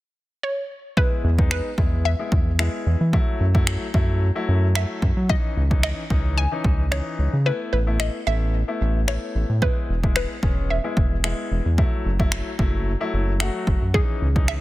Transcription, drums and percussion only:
0, 0, Header, 1, 2, 480
1, 0, Start_track
1, 0, Tempo, 540541
1, 862, Time_signature, 4, 2, 24, 8
1, 12972, End_track
2, 0, Start_track
2, 0, Title_t, "Drums"
2, 861, Note_on_c, 9, 36, 101
2, 950, Note_off_c, 9, 36, 0
2, 1230, Note_on_c, 9, 36, 80
2, 1319, Note_off_c, 9, 36, 0
2, 1341, Note_on_c, 9, 26, 105
2, 1429, Note_off_c, 9, 26, 0
2, 1579, Note_on_c, 9, 36, 93
2, 1668, Note_off_c, 9, 36, 0
2, 2059, Note_on_c, 9, 36, 95
2, 2148, Note_off_c, 9, 36, 0
2, 2301, Note_on_c, 9, 26, 101
2, 2390, Note_off_c, 9, 26, 0
2, 2781, Note_on_c, 9, 36, 106
2, 2870, Note_off_c, 9, 36, 0
2, 3150, Note_on_c, 9, 36, 83
2, 3239, Note_off_c, 9, 36, 0
2, 3260, Note_on_c, 9, 26, 106
2, 3349, Note_off_c, 9, 26, 0
2, 3500, Note_on_c, 9, 36, 87
2, 3588, Note_off_c, 9, 36, 0
2, 4222, Note_on_c, 9, 26, 107
2, 4310, Note_off_c, 9, 26, 0
2, 4460, Note_on_c, 9, 36, 86
2, 4549, Note_off_c, 9, 36, 0
2, 4702, Note_on_c, 9, 36, 104
2, 4790, Note_off_c, 9, 36, 0
2, 5071, Note_on_c, 9, 36, 81
2, 5160, Note_off_c, 9, 36, 0
2, 5180, Note_on_c, 9, 26, 106
2, 5269, Note_off_c, 9, 26, 0
2, 5420, Note_on_c, 9, 36, 85
2, 5509, Note_off_c, 9, 36, 0
2, 5900, Note_on_c, 9, 36, 96
2, 5989, Note_off_c, 9, 36, 0
2, 6143, Note_on_c, 9, 26, 105
2, 6232, Note_off_c, 9, 26, 0
2, 7101, Note_on_c, 9, 26, 108
2, 7190, Note_off_c, 9, 26, 0
2, 8063, Note_on_c, 9, 26, 104
2, 8152, Note_off_c, 9, 26, 0
2, 8542, Note_on_c, 9, 36, 103
2, 8631, Note_off_c, 9, 36, 0
2, 8911, Note_on_c, 9, 36, 79
2, 9000, Note_off_c, 9, 36, 0
2, 9020, Note_on_c, 9, 26, 103
2, 9108, Note_off_c, 9, 26, 0
2, 9260, Note_on_c, 9, 36, 86
2, 9349, Note_off_c, 9, 36, 0
2, 9740, Note_on_c, 9, 36, 95
2, 9829, Note_off_c, 9, 36, 0
2, 9981, Note_on_c, 9, 26, 105
2, 10070, Note_off_c, 9, 26, 0
2, 10462, Note_on_c, 9, 36, 102
2, 10550, Note_off_c, 9, 36, 0
2, 10830, Note_on_c, 9, 36, 81
2, 10919, Note_off_c, 9, 36, 0
2, 10939, Note_on_c, 9, 26, 110
2, 11027, Note_off_c, 9, 26, 0
2, 11180, Note_on_c, 9, 36, 91
2, 11269, Note_off_c, 9, 36, 0
2, 11901, Note_on_c, 9, 26, 104
2, 11989, Note_off_c, 9, 26, 0
2, 12140, Note_on_c, 9, 36, 87
2, 12229, Note_off_c, 9, 36, 0
2, 12382, Note_on_c, 9, 36, 108
2, 12471, Note_off_c, 9, 36, 0
2, 12751, Note_on_c, 9, 36, 84
2, 12839, Note_off_c, 9, 36, 0
2, 12859, Note_on_c, 9, 26, 109
2, 12948, Note_off_c, 9, 26, 0
2, 12972, End_track
0, 0, End_of_file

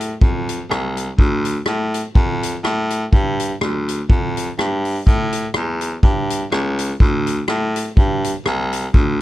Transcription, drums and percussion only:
0, 0, Header, 1, 2, 480
1, 0, Start_track
1, 0, Key_signature, -1, "minor"
1, 0, Tempo, 485044
1, 1173, Time_signature, 4, 2, 24, 8
1, 9122, End_track
2, 0, Start_track
2, 0, Title_t, "Drums"
2, 6, Note_on_c, 9, 42, 86
2, 105, Note_off_c, 9, 42, 0
2, 213, Note_on_c, 9, 36, 114
2, 312, Note_off_c, 9, 36, 0
2, 483, Note_on_c, 9, 42, 99
2, 582, Note_off_c, 9, 42, 0
2, 706, Note_on_c, 9, 37, 114
2, 805, Note_off_c, 9, 37, 0
2, 960, Note_on_c, 9, 42, 86
2, 1059, Note_off_c, 9, 42, 0
2, 1173, Note_on_c, 9, 36, 96
2, 1272, Note_off_c, 9, 36, 0
2, 1433, Note_on_c, 9, 42, 91
2, 1532, Note_off_c, 9, 42, 0
2, 1641, Note_on_c, 9, 37, 120
2, 1740, Note_off_c, 9, 37, 0
2, 1921, Note_on_c, 9, 42, 83
2, 2020, Note_off_c, 9, 42, 0
2, 2132, Note_on_c, 9, 36, 116
2, 2231, Note_off_c, 9, 36, 0
2, 2406, Note_on_c, 9, 42, 98
2, 2505, Note_off_c, 9, 42, 0
2, 2618, Note_on_c, 9, 37, 117
2, 2717, Note_off_c, 9, 37, 0
2, 2874, Note_on_c, 9, 42, 100
2, 2973, Note_off_c, 9, 42, 0
2, 3094, Note_on_c, 9, 36, 109
2, 3193, Note_off_c, 9, 36, 0
2, 3360, Note_on_c, 9, 42, 89
2, 3459, Note_off_c, 9, 42, 0
2, 3575, Note_on_c, 9, 37, 110
2, 3674, Note_off_c, 9, 37, 0
2, 3844, Note_on_c, 9, 42, 93
2, 3943, Note_off_c, 9, 42, 0
2, 4053, Note_on_c, 9, 36, 119
2, 4152, Note_off_c, 9, 36, 0
2, 4324, Note_on_c, 9, 42, 100
2, 4423, Note_off_c, 9, 42, 0
2, 4541, Note_on_c, 9, 37, 110
2, 4640, Note_off_c, 9, 37, 0
2, 4798, Note_on_c, 9, 46, 55
2, 4897, Note_off_c, 9, 46, 0
2, 5012, Note_on_c, 9, 44, 61
2, 5015, Note_on_c, 9, 36, 104
2, 5110, Note_off_c, 9, 44, 0
2, 5114, Note_off_c, 9, 36, 0
2, 5270, Note_on_c, 9, 42, 89
2, 5369, Note_off_c, 9, 42, 0
2, 5483, Note_on_c, 9, 37, 118
2, 5582, Note_off_c, 9, 37, 0
2, 5749, Note_on_c, 9, 42, 86
2, 5848, Note_off_c, 9, 42, 0
2, 5968, Note_on_c, 9, 36, 116
2, 6067, Note_off_c, 9, 36, 0
2, 6237, Note_on_c, 9, 42, 103
2, 6336, Note_off_c, 9, 42, 0
2, 6454, Note_on_c, 9, 37, 118
2, 6553, Note_off_c, 9, 37, 0
2, 6715, Note_on_c, 9, 42, 91
2, 6814, Note_off_c, 9, 42, 0
2, 6929, Note_on_c, 9, 36, 103
2, 7028, Note_off_c, 9, 36, 0
2, 7191, Note_on_c, 9, 42, 87
2, 7290, Note_off_c, 9, 42, 0
2, 7401, Note_on_c, 9, 37, 114
2, 7500, Note_off_c, 9, 37, 0
2, 7677, Note_on_c, 9, 42, 90
2, 7776, Note_off_c, 9, 42, 0
2, 7886, Note_on_c, 9, 36, 117
2, 7985, Note_off_c, 9, 36, 0
2, 8158, Note_on_c, 9, 42, 96
2, 8257, Note_off_c, 9, 42, 0
2, 8369, Note_on_c, 9, 37, 106
2, 8468, Note_off_c, 9, 37, 0
2, 8634, Note_on_c, 9, 42, 86
2, 8733, Note_off_c, 9, 42, 0
2, 8849, Note_on_c, 9, 36, 106
2, 8948, Note_off_c, 9, 36, 0
2, 9122, End_track
0, 0, End_of_file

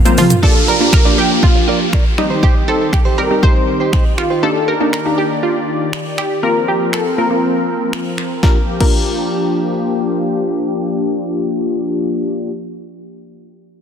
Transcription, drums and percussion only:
0, 0, Header, 1, 2, 480
1, 0, Start_track
1, 0, Key_signature, -2, "minor"
1, 0, Tempo, 500000
1, 413, Time_signature, 4, 2, 24, 8
1, 13264, End_track
2, 0, Start_track
2, 0, Title_t, "Drums"
2, 53, Note_on_c, 9, 47, 72
2, 54, Note_on_c, 9, 42, 56
2, 54, Note_on_c, 9, 82, 52
2, 149, Note_off_c, 9, 47, 0
2, 150, Note_off_c, 9, 42, 0
2, 150, Note_off_c, 9, 82, 0
2, 171, Note_on_c, 9, 46, 82
2, 171, Note_on_c, 9, 82, 61
2, 172, Note_on_c, 9, 45, 103
2, 267, Note_off_c, 9, 46, 0
2, 267, Note_off_c, 9, 82, 0
2, 268, Note_off_c, 9, 45, 0
2, 291, Note_on_c, 9, 42, 78
2, 291, Note_on_c, 9, 82, 78
2, 293, Note_on_c, 9, 43, 99
2, 387, Note_off_c, 9, 42, 0
2, 387, Note_off_c, 9, 82, 0
2, 389, Note_off_c, 9, 43, 0
2, 412, Note_on_c, 9, 36, 113
2, 508, Note_off_c, 9, 36, 0
2, 890, Note_on_c, 9, 36, 113
2, 893, Note_on_c, 9, 26, 104
2, 986, Note_off_c, 9, 36, 0
2, 989, Note_off_c, 9, 26, 0
2, 1372, Note_on_c, 9, 36, 99
2, 1468, Note_off_c, 9, 36, 0
2, 1852, Note_on_c, 9, 36, 117
2, 1854, Note_on_c, 9, 26, 102
2, 1948, Note_off_c, 9, 36, 0
2, 1950, Note_off_c, 9, 26, 0
2, 2094, Note_on_c, 9, 26, 60
2, 2190, Note_off_c, 9, 26, 0
2, 2333, Note_on_c, 9, 36, 112
2, 2429, Note_off_c, 9, 36, 0
2, 2811, Note_on_c, 9, 36, 106
2, 2814, Note_on_c, 9, 26, 98
2, 2907, Note_off_c, 9, 36, 0
2, 2910, Note_off_c, 9, 26, 0
2, 3293, Note_on_c, 9, 36, 101
2, 3389, Note_off_c, 9, 36, 0
2, 3772, Note_on_c, 9, 36, 112
2, 3774, Note_on_c, 9, 26, 102
2, 3868, Note_off_c, 9, 36, 0
2, 3870, Note_off_c, 9, 26, 0
2, 4013, Note_on_c, 9, 26, 59
2, 4109, Note_off_c, 9, 26, 0
2, 4734, Note_on_c, 9, 26, 99
2, 4830, Note_off_c, 9, 26, 0
2, 5694, Note_on_c, 9, 26, 104
2, 5790, Note_off_c, 9, 26, 0
2, 5934, Note_on_c, 9, 26, 57
2, 6030, Note_off_c, 9, 26, 0
2, 6653, Note_on_c, 9, 26, 97
2, 6749, Note_off_c, 9, 26, 0
2, 7614, Note_on_c, 9, 26, 99
2, 7710, Note_off_c, 9, 26, 0
2, 7854, Note_on_c, 9, 26, 55
2, 7950, Note_off_c, 9, 26, 0
2, 8093, Note_on_c, 9, 36, 104
2, 8093, Note_on_c, 9, 38, 81
2, 8189, Note_off_c, 9, 36, 0
2, 8189, Note_off_c, 9, 38, 0
2, 8453, Note_on_c, 9, 36, 90
2, 8453, Note_on_c, 9, 49, 77
2, 8549, Note_off_c, 9, 36, 0
2, 8549, Note_off_c, 9, 49, 0
2, 13264, End_track
0, 0, End_of_file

